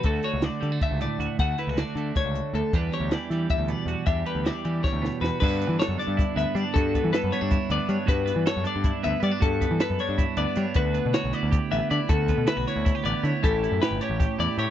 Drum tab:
CC |-------|-------|-------|-------|
HH |xxxxxxx|xxxxxxx|xxxxxxx|xxxx---|
SD |--o----|-oo-o--|--oo---|--o-ooo|
BD |o---o--|o---o--|o---o--|o---o--|

CC |x------|-------|-------|-------|
HH |-xxxxxx|xxxxxxx|xxxxxxx|xxxxxxx|
SD |--oo---|--oo---|-oo--o-|--o---o|
BD |o---o--|oo--o--|o---o--|oo--o--|

CC |-------|-------|-------|
HH |xxxxxxx|xxxxxxx|xxxxxxx|
SD |--o--o-|--oo---|--oooo-|
BD |o---o--|oo--o--|o---o--|